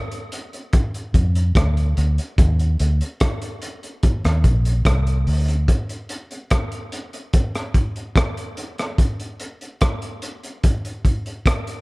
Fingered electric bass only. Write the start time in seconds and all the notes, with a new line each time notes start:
1.15 F2
1.56 D2
1.98 D2
2.38 D#2
2.80 D2
4.25 D#2
4.44 A#1
4.86 C2
5.27 D2